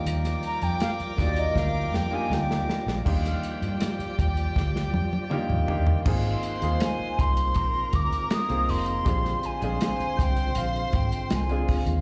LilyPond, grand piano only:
\new Staff \with { instrumentName = "Grand piano" } { \time 4/4 \key ees \major \tempo 4 = 80 <bes d' ees' f' g'>4 r8 <bes d' ees' f' ges' g'>4 r16 <bes d' ees' f' g'>4 r16 | <bes d' ees' f' g'>4. r4. <bes d' ees' f' g'>8 <bes d' ees' f' g'>8 | <bes c' ees' f' aes'>8 r16 <bes c' ees' f' aes'>4. r4 <bes c' ees' f' aes'>8 r16 | <c' d' f' g' aes'>8 r16 <aes c' d' f' aes'>4. r4 <aes c' d' f' aes'>8 r16 | }